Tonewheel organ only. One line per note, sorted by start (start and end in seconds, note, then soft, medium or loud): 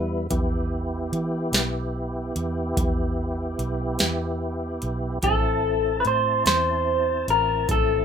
0.00 0.27 G3 medium
0.00 0.27 B3 medium
0.00 0.27 E4 medium
0.30 5.18 B3 medium
0.30 5.19 E4 medium
0.30 5.19 G4 medium
5.24 8.05 C4 medium
5.24 8.05 E4 medium
5.24 8.05 A5 medium